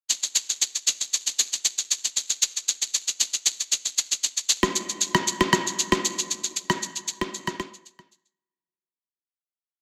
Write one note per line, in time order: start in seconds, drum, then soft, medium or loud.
0.10 shaker medium
0.23 shaker medium
0.35 shaker loud
0.50 shaker soft
0.62 shaker medium
0.75 shaker soft
0.87 shaker medium
1.01 shaker soft
1.13 shaker medium
1.27 shaker soft
1.39 shaker medium
1.53 shaker soft
1.65 shaker medium
1.78 shaker soft
1.91 shaker medium
2.05 shaker medium
2.17 shaker medium
2.30 shaker medium
2.42 shaker loud
2.56 shaker medium
2.69 shaker medium
2.82 shaker soft
2.94 shaker medium
3.08 shaker soft
3.20 shaker medium
3.33 shaker soft
3.46 shaker medium
3.60 shaker soft
3.72 shaker medium
3.85 shaker soft
3.98 shaker medium
4.12 shaker medium
4.24 shaker medium
4.37 shaker medium
4.49 shaker loud
4.63 cross-stick medium
4.63 shaker medium
4.76 shaker medium
4.89 shaker soft
5.01 shaker medium
5.15 cross-stick medium
5.15 shaker soft
5.27 shaker medium
5.41 cross-stick medium
5.41 shaker soft
5.53 cross-stick medium
5.53 shaker medium
5.67 shaker soft
5.79 shaker medium
5.92 cross-stick medium
5.92 shaker soft
6.05 shaker medium
6.19 shaker medium
6.31 shaker medium
6.44 shaker medium
6.56 shaker loud
6.70 cross-stick medium
6.70 shaker medium
6.82 shaker medium
6.96 shaker soft
7.08 shaker medium
7.21 cross-stick medium
7.21 shaker soft
7.34 shaker medium
7.47 cross-stick loud
7.47 shaker soft
7.60 cross-stick medium
7.60 shaker medium
7.74 shaker soft
7.86 shaker medium
7.99 cross-stick medium
7.99 shaker soft
8.12 shaker medium
8.25 shaker medium